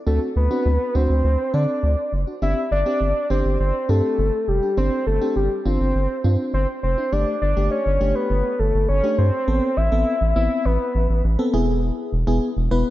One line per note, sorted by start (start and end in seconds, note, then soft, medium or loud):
0.07 0.19 D2 loud
0.07 0.29 C4 medium
0.07 0.29 D4 medium
0.07 0.29 F#4 medium
0.07 0.20 A4 medium
0.36 0.49 D2 loud
0.36 0.97 B4 loud
0.51 0.73 C4 medium
0.51 0.73 D4 medium
0.51 0.73 F#4 medium
0.66 0.78 D2 loud
0.95 1.07 D2 loud
0.95 1.25 C4 medium
0.95 1.25 D4 medium
0.95 1.25 F#4 medium
0.95 1.55 C5 loud
1.10 1.22 D2 loud
1.24 1.37 D2 loud
1.54 1.66 D3 loud
1.54 1.92 C4 medium
1.54 1.92 D4 medium
1.54 1.92 A4 medium
1.54 2.13 D5 loud
1.83 1.96 D2 loud
2.13 2.25 F#1 medium
2.27 2.35 D4 medium
2.27 2.35 F#4 medium
2.42 2.55 G1 loud
2.42 2.65 C4 medium
2.42 2.65 D4 medium
2.42 2.65 G4 medium
2.42 2.70 E5 loud
2.71 2.84 G1 medium
2.71 3.26 D5 loud
2.86 3.09 C4 medium
2.86 3.09 D4 medium
2.86 3.09 G4 medium
3.01 3.13 G1 loud
3.30 3.43 G1 loud
3.30 3.60 C4 medium
3.30 3.60 D4 medium
3.30 3.60 G4 medium
3.30 3.58 C5 loud
3.45 3.57 G1 medium
3.60 3.72 G1 loud
3.60 3.91 C5 loud
3.89 4.02 G2 medium
3.89 4.27 C4 medium
3.89 4.27 D4 medium
3.89 4.27 G4 medium
3.89 4.50 A4 loud
4.18 4.31 G1 loud
4.48 4.60 F1 medium
4.48 4.77 G4 medium
4.63 4.70 D4 medium
4.63 4.70 G4 medium
4.77 4.90 G1 loud
4.77 5.00 C4 medium
4.77 5.00 D4 medium
4.77 5.00 G4 medium
4.77 5.05 C5 loud
5.07 5.19 G1 loud
5.07 5.34 A4 medium
5.21 5.44 C4 medium
5.21 5.44 D4 medium
5.21 5.44 G4 medium
5.36 5.49 G1 loud
5.36 5.50 G4 medium
5.66 5.78 G1 loud
5.66 5.96 C4 medium
5.66 5.96 D4 medium
5.66 5.96 F4 medium
5.66 6.50 C5 medium
5.80 5.93 G1 loud
5.95 6.07 G1 loud
6.24 6.37 G2 loud
6.24 6.62 C4 medium
6.24 6.62 D4 medium
6.24 6.62 F4 medium
6.54 6.66 G1 loud
6.54 6.67 C5 medium
6.83 6.96 F1 medium
6.83 7.14 C5 medium
6.98 7.05 D4 medium
6.98 7.05 E4 loud
7.12 7.25 G1 loud
7.12 7.35 A3 medium
7.12 7.35 D4 medium
7.12 7.35 G4 medium
7.12 7.41 D5 loud
7.42 7.54 G1 loud
7.42 7.69 D5 loud
7.57 7.69 G1 loud
7.57 7.79 A3 medium
7.57 7.79 D4 medium
7.57 7.79 G4 medium
7.71 8.17 C#5 loud
7.86 7.99 G1 medium
8.01 8.13 G1 loud
8.01 8.54 A3 medium
8.01 8.54 D4 medium
8.01 8.54 G4 medium
8.15 8.61 B4 loud
8.30 8.43 G1 loud
8.59 8.72 G1 medium
8.59 8.88 A4 medium
8.74 8.87 G1 loud
8.89 9.02 G1 loud
8.89 9.16 C#5 loud
9.04 9.26 A3 medium
9.04 9.26 D4 medium
9.04 9.26 G4 medium
9.18 9.31 G2 loud
9.18 9.78 C5 loud
9.48 9.60 A1 loud
9.48 9.71 B3 medium
9.48 9.71 C4 medium
9.48 9.71 A4 medium
9.77 9.90 A1 loud
9.77 10.35 E5 loud
9.92 10.04 A1 loud
9.92 10.15 B3 medium
9.92 10.15 C4 medium
9.92 10.15 A4 medium
10.21 10.34 A1 loud
10.36 10.49 A1 loud
10.36 10.89 B3 medium
10.36 10.89 C4 medium
10.36 10.89 E4 medium
10.36 10.67 E5 loud
10.65 10.78 A1 loud
10.65 11.24 B4 loud
10.95 11.07 A1 loud
11.10 11.22 A1 loud
11.24 11.37 A1 loud
11.39 11.52 B3 medium
11.39 11.54 C4 medium
11.39 11.54 A4 loud
11.54 11.91 E1 medium
11.54 12.13 B3 medium
11.54 12.13 E4 medium
11.54 12.13 G#4 loud
12.13 12.25 E1 loud
12.27 12.40 E1 loud
12.27 12.50 B3 medium
12.27 12.50 E4 medium
12.27 12.50 G#4 loud
12.57 12.69 E1 loud
12.71 12.84 E1 loud
12.71 12.90 B3 medium
12.71 12.90 E4 medium
12.71 12.90 B4 loud